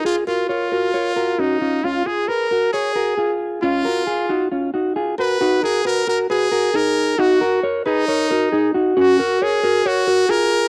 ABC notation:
X:1
M:4/4
L:1/8
Q:1/4=135
K:Blyd
V:1 name="Trumpet"
E E E4 D2 | E G A2 G3 z | E4 z3 B- | B G A A G2 A2 |
F2 z D4 z | F2 G2 F2 A2 |]
V:2 name="Clean electric guitar"
[EG] [FA] [Ac] [FA] [Ac] [FA] [CF] [CE] | [CE] [EG] [GB] [FA] [Gc] [FA] [EG]2 | [CE] [FA] [EG] [DF] [CE] [DF] [EG] [FA] | [DF] [FA] [FB] [FA] [FB] [FA] [DG]2 |
[DF] [FA] [Ac] [GB] [Ac] [FA] [DG] [DF] | [CF] [FA] [Ac] [FA] [Ac] [FA] [EG]2 |]